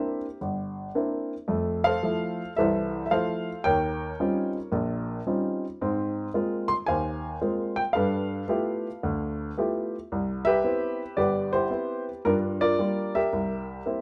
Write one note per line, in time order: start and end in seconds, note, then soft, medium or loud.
0.00 0.25 A#3 soft
0.00 0.25 C4 soft
0.00 0.25 D4 soft
0.00 0.25 E4 medium
0.00 0.37 G4 medium
0.00 0.37 A#4 medium
0.00 0.18 E5 medium
0.41 0.88 G1 medium
0.95 1.32 A#3 medium
0.95 1.32 C4 soft
0.95 1.33 D4 soft
0.95 1.33 E4 medium
1.48 1.95 F2 medium
1.48 1.95 A3 medium
1.84 2.57 A4 medium
1.84 2.57 C5 medium
1.84 2.52 F5 loud
2.03 2.40 F3 soft
2.03 2.41 A3 soft
2.03 2.41 E4 soft
2.56 3.05 C2 medium
2.56 3.04 E3 medium
2.56 3.11 A4 medium
2.56 3.11 C5 medium
2.56 3.02 E5 medium
3.06 3.10 E5 medium
3.11 3.48 F3 soft
3.11 3.49 A3 soft
3.11 3.49 E4 medium
3.11 3.61 A4 medium
3.11 3.61 C5 medium
3.11 3.66 F5 medium
3.64 4.12 D#2 medium
3.64 4.68 A#4 medium
3.64 4.68 C#5 medium
3.64 4.50 G5 medium
4.20 4.57 G3 soft
4.20 4.56 C4 soft
4.20 4.57 C#4 soft
4.20 4.57 D#4 soft
4.20 4.57 F4 medium
4.72 5.18 A#1 medium
4.72 5.19 A#2 medium
5.27 5.64 G3 soft
5.27 5.64 C4 soft
5.27 5.64 C#4 soft
5.27 5.64 D#4 soft
5.27 5.64 F4 soft
5.81 6.27 G#2 medium
5.81 6.27 C4 medium
6.34 6.71 G#3 soft
6.34 6.71 A#3 soft
6.34 6.72 C4 soft
6.34 6.72 F4 medium
6.68 6.73 C6 medium
6.86 7.34 D#2 medium
6.86 7.91 C5 medium
6.86 7.91 F5 medium
6.86 7.37 G#5 medium
7.41 7.79 G#3 soft
7.41 7.79 A#3 soft
7.41 7.79 C4 soft
7.41 7.79 F4 soft
7.76 7.81 G5 medium
7.93 8.42 G2 medium
7.93 9.52 A4 medium
7.93 9.52 B4 medium
7.93 9.51 F5 medium
8.48 8.86 A3 soft
8.48 8.86 B3 soft
8.48 8.86 E4 soft
8.48 8.86 F4 soft
8.48 8.86 G4 medium
9.03 9.50 D2 medium
9.58 9.94 A3 soft
9.58 9.95 B3 soft
9.58 9.95 E4 soft
9.58 9.95 F4 soft
9.58 9.95 G4 medium
10.12 10.58 C2 medium
10.45 11.16 G4 medium
10.45 11.17 B4 medium
10.45 11.19 E5 loud
10.64 11.01 B3 medium
10.64 11.02 C4 soft
10.64 11.02 E4 medium
11.17 11.64 G1 medium
11.17 11.52 G4 medium
11.17 12.21 B4 medium
11.17 11.50 D5 medium
11.53 11.69 E4 soft
11.53 12.21 G4 medium
11.53 12.03 C5 medium
11.70 12.09 B3 soft
11.70 12.08 C4 soft
11.70 12.09 E4 medium
12.25 12.72 G2 medium
12.25 13.29 D4 medium
12.25 12.61 F4 medium
12.25 12.33 A#4 medium
12.61 12.79 F4 medium
12.61 13.14 A#4 medium
12.61 13.16 D5 medium
12.79 13.16 G3 soft
12.79 13.17 A#3 soft
12.79 13.17 F4 medium
13.15 14.01 G4 medium
13.15 14.01 A#4 medium
13.15 14.01 E5 medium
13.33 13.79 C2 medium
13.86 14.01 A#3 soft
13.86 14.01 C4 soft
13.86 14.01 E4 soft